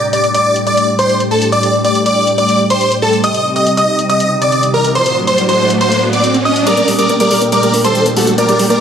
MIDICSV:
0, 0, Header, 1, 7, 480
1, 0, Start_track
1, 0, Key_signature, -2, "minor"
1, 0, Tempo, 428571
1, 1706, Time_signature, 4, 2, 24, 8
1, 9862, End_track
2, 0, Start_track
2, 0, Title_t, "Grand piano"
2, 0, Program_c, 0, 0
2, 147, Note_on_c, 0, 86, 79
2, 302, Note_off_c, 0, 86, 0
2, 387, Note_on_c, 0, 86, 87
2, 619, Note_off_c, 0, 86, 0
2, 746, Note_on_c, 0, 86, 86
2, 979, Note_off_c, 0, 86, 0
2, 1107, Note_on_c, 0, 84, 85
2, 1339, Note_off_c, 0, 84, 0
2, 1467, Note_on_c, 0, 81, 79
2, 1622, Note_off_c, 0, 81, 0
2, 1706, Note_on_c, 0, 86, 90
2, 1939, Note_off_c, 0, 86, 0
2, 2066, Note_on_c, 0, 86, 80
2, 2221, Note_off_c, 0, 86, 0
2, 2305, Note_on_c, 0, 86, 84
2, 2538, Note_off_c, 0, 86, 0
2, 2667, Note_on_c, 0, 86, 84
2, 2899, Note_off_c, 0, 86, 0
2, 3027, Note_on_c, 0, 84, 84
2, 3259, Note_off_c, 0, 84, 0
2, 3388, Note_on_c, 0, 81, 80
2, 3542, Note_off_c, 0, 81, 0
2, 3627, Note_on_c, 0, 87, 93
2, 3860, Note_off_c, 0, 87, 0
2, 3987, Note_on_c, 0, 87, 83
2, 4142, Note_off_c, 0, 87, 0
2, 4226, Note_on_c, 0, 87, 83
2, 4459, Note_off_c, 0, 87, 0
2, 4586, Note_on_c, 0, 87, 86
2, 4819, Note_off_c, 0, 87, 0
2, 4944, Note_on_c, 0, 86, 85
2, 5178, Note_off_c, 0, 86, 0
2, 5305, Note_on_c, 0, 82, 79
2, 5461, Note_off_c, 0, 82, 0
2, 5546, Note_on_c, 0, 84, 92
2, 5779, Note_off_c, 0, 84, 0
2, 5905, Note_on_c, 0, 84, 82
2, 6061, Note_off_c, 0, 84, 0
2, 6145, Note_on_c, 0, 84, 88
2, 6378, Note_off_c, 0, 84, 0
2, 6507, Note_on_c, 0, 84, 86
2, 6739, Note_off_c, 0, 84, 0
2, 6866, Note_on_c, 0, 86, 82
2, 7099, Note_off_c, 0, 86, 0
2, 7226, Note_on_c, 0, 87, 84
2, 7381, Note_off_c, 0, 87, 0
2, 7465, Note_on_c, 0, 86, 92
2, 7698, Note_off_c, 0, 86, 0
2, 7824, Note_on_c, 0, 86, 83
2, 7980, Note_off_c, 0, 86, 0
2, 8064, Note_on_c, 0, 86, 84
2, 8298, Note_off_c, 0, 86, 0
2, 8425, Note_on_c, 0, 86, 87
2, 8658, Note_off_c, 0, 86, 0
2, 8785, Note_on_c, 0, 84, 86
2, 9018, Note_off_c, 0, 84, 0
2, 9147, Note_on_c, 0, 81, 80
2, 9302, Note_off_c, 0, 81, 0
2, 9387, Note_on_c, 0, 86, 93
2, 9619, Note_off_c, 0, 86, 0
2, 9747, Note_on_c, 0, 86, 87
2, 9862, Note_off_c, 0, 86, 0
2, 9862, End_track
3, 0, Start_track
3, 0, Title_t, "Supersaw synth"
3, 0, Program_c, 1, 81
3, 147, Note_on_c, 1, 74, 88
3, 302, Note_off_c, 1, 74, 0
3, 386, Note_on_c, 1, 74, 94
3, 619, Note_off_c, 1, 74, 0
3, 746, Note_on_c, 1, 74, 90
3, 979, Note_off_c, 1, 74, 0
3, 1105, Note_on_c, 1, 72, 95
3, 1339, Note_off_c, 1, 72, 0
3, 1467, Note_on_c, 1, 69, 78
3, 1622, Note_off_c, 1, 69, 0
3, 1706, Note_on_c, 1, 74, 97
3, 1939, Note_off_c, 1, 74, 0
3, 2065, Note_on_c, 1, 74, 87
3, 2221, Note_off_c, 1, 74, 0
3, 2306, Note_on_c, 1, 74, 91
3, 2539, Note_off_c, 1, 74, 0
3, 2665, Note_on_c, 1, 74, 92
3, 2898, Note_off_c, 1, 74, 0
3, 3027, Note_on_c, 1, 72, 92
3, 3259, Note_off_c, 1, 72, 0
3, 3385, Note_on_c, 1, 69, 82
3, 3541, Note_off_c, 1, 69, 0
3, 3625, Note_on_c, 1, 75, 95
3, 3858, Note_off_c, 1, 75, 0
3, 3985, Note_on_c, 1, 75, 86
3, 4141, Note_off_c, 1, 75, 0
3, 4225, Note_on_c, 1, 75, 92
3, 4459, Note_off_c, 1, 75, 0
3, 4586, Note_on_c, 1, 75, 93
3, 4819, Note_off_c, 1, 75, 0
3, 4945, Note_on_c, 1, 74, 97
3, 5178, Note_off_c, 1, 74, 0
3, 5307, Note_on_c, 1, 70, 83
3, 5462, Note_off_c, 1, 70, 0
3, 5546, Note_on_c, 1, 72, 93
3, 5779, Note_off_c, 1, 72, 0
3, 5906, Note_on_c, 1, 72, 88
3, 6061, Note_off_c, 1, 72, 0
3, 6146, Note_on_c, 1, 72, 94
3, 6379, Note_off_c, 1, 72, 0
3, 6505, Note_on_c, 1, 72, 93
3, 6738, Note_off_c, 1, 72, 0
3, 6867, Note_on_c, 1, 74, 92
3, 7099, Note_off_c, 1, 74, 0
3, 7227, Note_on_c, 1, 75, 80
3, 7382, Note_off_c, 1, 75, 0
3, 7466, Note_on_c, 1, 70, 74
3, 7466, Note_on_c, 1, 74, 101
3, 7699, Note_off_c, 1, 70, 0
3, 7699, Note_off_c, 1, 74, 0
3, 7826, Note_on_c, 1, 70, 77
3, 7826, Note_on_c, 1, 74, 90
3, 7981, Note_off_c, 1, 70, 0
3, 7981, Note_off_c, 1, 74, 0
3, 8067, Note_on_c, 1, 74, 94
3, 8068, Note_on_c, 1, 70, 78
3, 8299, Note_off_c, 1, 74, 0
3, 8300, Note_off_c, 1, 70, 0
3, 8428, Note_on_c, 1, 70, 77
3, 8429, Note_on_c, 1, 74, 91
3, 8660, Note_off_c, 1, 70, 0
3, 8660, Note_off_c, 1, 74, 0
3, 8787, Note_on_c, 1, 69, 80
3, 8788, Note_on_c, 1, 72, 98
3, 9019, Note_off_c, 1, 69, 0
3, 9020, Note_off_c, 1, 72, 0
3, 9147, Note_on_c, 1, 66, 72
3, 9147, Note_on_c, 1, 69, 84
3, 9302, Note_off_c, 1, 66, 0
3, 9302, Note_off_c, 1, 69, 0
3, 9388, Note_on_c, 1, 70, 75
3, 9388, Note_on_c, 1, 74, 94
3, 9620, Note_off_c, 1, 70, 0
3, 9620, Note_off_c, 1, 74, 0
3, 9747, Note_on_c, 1, 70, 79
3, 9747, Note_on_c, 1, 74, 88
3, 9862, Note_off_c, 1, 70, 0
3, 9862, Note_off_c, 1, 74, 0
3, 9862, End_track
4, 0, Start_track
4, 0, Title_t, "Analog synth pad"
4, 0, Program_c, 2, 89
4, 0, Note_on_c, 2, 45, 82
4, 0, Note_on_c, 2, 55, 74
4, 0, Note_on_c, 2, 62, 73
4, 0, Note_on_c, 2, 67, 92
4, 3586, Note_off_c, 2, 62, 0
4, 3587, Note_off_c, 2, 45, 0
4, 3625, Note_on_c, 2, 48, 79
4, 3625, Note_on_c, 2, 63, 74
4, 5500, Note_off_c, 2, 67, 0
4, 5501, Note_off_c, 2, 55, 0
4, 5527, Note_off_c, 2, 48, 0
4, 5527, Note_off_c, 2, 63, 0
4, 5544, Note_on_c, 2, 45, 85
4, 5545, Note_on_c, 2, 62, 74
4, 5545, Note_on_c, 2, 66, 86
4, 5546, Note_on_c, 2, 54, 73
4, 7446, Note_off_c, 2, 45, 0
4, 7446, Note_off_c, 2, 62, 0
4, 7446, Note_off_c, 2, 66, 0
4, 7447, Note_off_c, 2, 54, 0
4, 7465, Note_on_c, 2, 46, 82
4, 7465, Note_on_c, 2, 57, 77
4, 7465, Note_on_c, 2, 62, 78
4, 7466, Note_on_c, 2, 67, 93
4, 9862, Note_off_c, 2, 46, 0
4, 9862, Note_off_c, 2, 57, 0
4, 9862, Note_off_c, 2, 62, 0
4, 9862, Note_off_c, 2, 67, 0
4, 9862, End_track
5, 0, Start_track
5, 0, Title_t, "Synth pluck"
5, 0, Program_c, 3, 84
5, 7466, Note_on_c, 3, 55, 80
5, 7492, Note_off_c, 3, 55, 0
5, 7586, Note_on_c, 3, 58, 73
5, 7612, Note_off_c, 3, 58, 0
5, 7705, Note_on_c, 3, 55, 79
5, 7772, Note_off_c, 3, 55, 0
5, 7826, Note_on_c, 3, 55, 69
5, 7852, Note_off_c, 3, 55, 0
5, 7946, Note_on_c, 3, 58, 76
5, 7973, Note_off_c, 3, 58, 0
5, 8065, Note_on_c, 3, 55, 75
5, 8132, Note_off_c, 3, 55, 0
5, 8185, Note_on_c, 3, 55, 71
5, 8212, Note_off_c, 3, 55, 0
5, 8306, Note_on_c, 3, 58, 72
5, 8332, Note_off_c, 3, 58, 0
5, 8426, Note_on_c, 3, 55, 80
5, 8492, Note_off_c, 3, 55, 0
5, 8546, Note_on_c, 3, 55, 73
5, 8573, Note_off_c, 3, 55, 0
5, 8667, Note_on_c, 3, 58, 74
5, 8693, Note_off_c, 3, 58, 0
5, 8786, Note_on_c, 3, 55, 74
5, 8852, Note_off_c, 3, 55, 0
5, 8906, Note_on_c, 3, 55, 76
5, 8932, Note_off_c, 3, 55, 0
5, 9027, Note_on_c, 3, 58, 76
5, 9053, Note_off_c, 3, 58, 0
5, 9146, Note_on_c, 3, 55, 72
5, 9212, Note_off_c, 3, 55, 0
5, 9266, Note_on_c, 3, 55, 74
5, 9293, Note_off_c, 3, 55, 0
5, 9387, Note_on_c, 3, 58, 79
5, 9413, Note_off_c, 3, 58, 0
5, 9506, Note_on_c, 3, 55, 74
5, 9572, Note_off_c, 3, 55, 0
5, 9626, Note_on_c, 3, 55, 76
5, 9653, Note_off_c, 3, 55, 0
5, 9744, Note_on_c, 3, 58, 70
5, 9772, Note_off_c, 3, 58, 0
5, 9862, End_track
6, 0, Start_track
6, 0, Title_t, "Riser"
6, 0, Program_c, 4, 103
6, 3625, Note_on_c, 4, 60, 71
6, 7465, Note_off_c, 4, 60, 0
6, 7465, Note_on_c, 4, 60, 76
6, 9862, Note_off_c, 4, 60, 0
6, 9862, End_track
7, 0, Start_track
7, 0, Title_t, "Drums"
7, 145, Note_on_c, 9, 42, 57
7, 257, Note_off_c, 9, 42, 0
7, 266, Note_on_c, 9, 42, 55
7, 378, Note_off_c, 9, 42, 0
7, 386, Note_on_c, 9, 42, 57
7, 498, Note_off_c, 9, 42, 0
7, 626, Note_on_c, 9, 42, 57
7, 738, Note_off_c, 9, 42, 0
7, 746, Note_on_c, 9, 42, 57
7, 858, Note_off_c, 9, 42, 0
7, 866, Note_on_c, 9, 42, 61
7, 978, Note_off_c, 9, 42, 0
7, 1107, Note_on_c, 9, 42, 56
7, 1219, Note_off_c, 9, 42, 0
7, 1227, Note_on_c, 9, 42, 57
7, 1339, Note_off_c, 9, 42, 0
7, 1347, Note_on_c, 9, 42, 54
7, 1459, Note_off_c, 9, 42, 0
7, 1587, Note_on_c, 9, 42, 60
7, 1699, Note_off_c, 9, 42, 0
7, 1706, Note_on_c, 9, 42, 59
7, 1818, Note_off_c, 9, 42, 0
7, 1827, Note_on_c, 9, 42, 61
7, 1939, Note_off_c, 9, 42, 0
7, 2067, Note_on_c, 9, 42, 55
7, 2179, Note_off_c, 9, 42, 0
7, 2186, Note_on_c, 9, 42, 56
7, 2298, Note_off_c, 9, 42, 0
7, 2305, Note_on_c, 9, 42, 58
7, 2417, Note_off_c, 9, 42, 0
7, 2545, Note_on_c, 9, 42, 59
7, 2657, Note_off_c, 9, 42, 0
7, 2666, Note_on_c, 9, 42, 58
7, 2778, Note_off_c, 9, 42, 0
7, 2786, Note_on_c, 9, 42, 61
7, 2898, Note_off_c, 9, 42, 0
7, 3026, Note_on_c, 9, 42, 60
7, 3138, Note_off_c, 9, 42, 0
7, 3146, Note_on_c, 9, 42, 59
7, 3258, Note_off_c, 9, 42, 0
7, 3266, Note_on_c, 9, 42, 57
7, 3378, Note_off_c, 9, 42, 0
7, 3505, Note_on_c, 9, 42, 60
7, 3617, Note_off_c, 9, 42, 0
7, 3625, Note_on_c, 9, 42, 63
7, 3737, Note_off_c, 9, 42, 0
7, 3746, Note_on_c, 9, 42, 65
7, 3858, Note_off_c, 9, 42, 0
7, 3986, Note_on_c, 9, 42, 59
7, 4098, Note_off_c, 9, 42, 0
7, 4105, Note_on_c, 9, 42, 59
7, 4217, Note_off_c, 9, 42, 0
7, 4226, Note_on_c, 9, 42, 62
7, 4338, Note_off_c, 9, 42, 0
7, 4466, Note_on_c, 9, 42, 61
7, 4578, Note_off_c, 9, 42, 0
7, 4586, Note_on_c, 9, 42, 63
7, 4698, Note_off_c, 9, 42, 0
7, 4706, Note_on_c, 9, 42, 65
7, 4818, Note_off_c, 9, 42, 0
7, 4946, Note_on_c, 9, 42, 64
7, 5058, Note_off_c, 9, 42, 0
7, 5066, Note_on_c, 9, 42, 64
7, 5178, Note_off_c, 9, 42, 0
7, 5186, Note_on_c, 9, 42, 57
7, 5298, Note_off_c, 9, 42, 0
7, 5426, Note_on_c, 9, 42, 62
7, 5538, Note_off_c, 9, 42, 0
7, 5547, Note_on_c, 9, 42, 63
7, 5659, Note_off_c, 9, 42, 0
7, 5666, Note_on_c, 9, 42, 64
7, 5778, Note_off_c, 9, 42, 0
7, 5907, Note_on_c, 9, 42, 62
7, 6019, Note_off_c, 9, 42, 0
7, 6027, Note_on_c, 9, 42, 62
7, 6139, Note_off_c, 9, 42, 0
7, 6146, Note_on_c, 9, 42, 65
7, 6258, Note_off_c, 9, 42, 0
7, 6386, Note_on_c, 9, 42, 65
7, 6498, Note_off_c, 9, 42, 0
7, 6506, Note_on_c, 9, 42, 64
7, 6618, Note_off_c, 9, 42, 0
7, 6626, Note_on_c, 9, 42, 64
7, 6738, Note_off_c, 9, 42, 0
7, 6866, Note_on_c, 9, 42, 64
7, 6978, Note_off_c, 9, 42, 0
7, 6986, Note_on_c, 9, 42, 64
7, 7098, Note_off_c, 9, 42, 0
7, 7105, Note_on_c, 9, 42, 60
7, 7217, Note_off_c, 9, 42, 0
7, 7346, Note_on_c, 9, 42, 66
7, 7458, Note_off_c, 9, 42, 0
7, 7466, Note_on_c, 9, 42, 64
7, 7578, Note_off_c, 9, 42, 0
7, 7585, Note_on_c, 9, 42, 63
7, 7697, Note_off_c, 9, 42, 0
7, 7705, Note_on_c, 9, 46, 96
7, 7817, Note_off_c, 9, 46, 0
7, 7824, Note_on_c, 9, 42, 64
7, 7936, Note_off_c, 9, 42, 0
7, 7945, Note_on_c, 9, 42, 63
7, 8057, Note_off_c, 9, 42, 0
7, 8064, Note_on_c, 9, 42, 61
7, 8176, Note_off_c, 9, 42, 0
7, 8184, Note_on_c, 9, 46, 97
7, 8296, Note_off_c, 9, 46, 0
7, 8305, Note_on_c, 9, 42, 66
7, 8417, Note_off_c, 9, 42, 0
7, 8425, Note_on_c, 9, 42, 64
7, 8537, Note_off_c, 9, 42, 0
7, 8545, Note_on_c, 9, 42, 65
7, 8657, Note_off_c, 9, 42, 0
7, 8666, Note_on_c, 9, 46, 101
7, 8778, Note_off_c, 9, 46, 0
7, 8786, Note_on_c, 9, 42, 65
7, 8898, Note_off_c, 9, 42, 0
7, 8905, Note_on_c, 9, 42, 66
7, 9017, Note_off_c, 9, 42, 0
7, 9025, Note_on_c, 9, 42, 60
7, 9137, Note_off_c, 9, 42, 0
7, 9145, Note_on_c, 9, 46, 99
7, 9257, Note_off_c, 9, 46, 0
7, 9265, Note_on_c, 9, 42, 65
7, 9377, Note_off_c, 9, 42, 0
7, 9386, Note_on_c, 9, 42, 65
7, 9498, Note_off_c, 9, 42, 0
7, 9505, Note_on_c, 9, 42, 63
7, 9617, Note_off_c, 9, 42, 0
7, 9625, Note_on_c, 9, 46, 104
7, 9737, Note_off_c, 9, 46, 0
7, 9745, Note_on_c, 9, 42, 62
7, 9857, Note_off_c, 9, 42, 0
7, 9862, End_track
0, 0, End_of_file